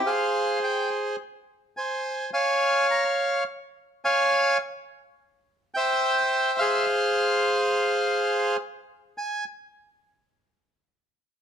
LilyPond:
\new Staff \with { instrumentName = "Bandoneon" } { \time 4/4 \key f \minor \tempo 4 = 105 << { f''4 g''8 r4. aes''4 | aes''4 bes''8 r4. aes''4 | r2 g''4. f''8~ | f''2. r4 |
aes''8 r2. r8 | } \\ { <aes' c''>2 r4 c''4 | <des'' f''>2 r4 <des'' f''>4 | r2 <c'' e''>4. <aes' c''>8~ | <aes' c''>2. r4 |
r1 | } >> }